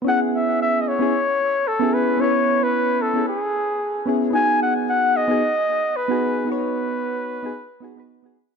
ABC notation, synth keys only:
X:1
M:4/4
L:1/16
Q:"Swing 16ths" 1/4=112
K:Bmix
V:1 name="Synth keys"
[B,CEG]6- [B,CEG] [B,CEG] z4 z [B,CEG]3 | [B,CEB]6- [B,CEB] [B,CEG] z6 [B,CEG]2 | [B,DFG]6- [B,DFG] [B,DFG] z4 z [B,DFG]3 | [B,DFc]6- [B,DFc] [B,DFG] z2 [B,DFG] [B,DFB]2 [B,DFG] z2 |]